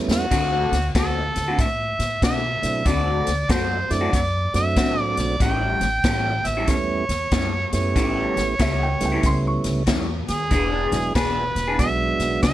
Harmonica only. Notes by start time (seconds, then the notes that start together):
0.11 F#4
0.97 A4
1.62 E5
2.24 E5
2.87 D5
3.51 C5
3.92 D5
4.15 D5
4.56 E5
5.01 D5
5.19 D5
5.42 G5
6.47 E5
6.69 C#5
7.74 C#5
10.29 G#4
11.15 B4
11.79 E5
12.43 E5